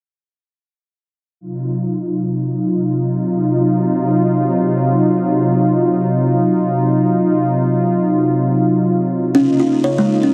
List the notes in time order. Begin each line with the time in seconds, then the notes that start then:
1.41 C3 F#3 D#4 F4
9.34 C#3 A#3 C#4 D#4 F4
9.60 F4
9.84 C#5
9.98 G#3
10.23 C#4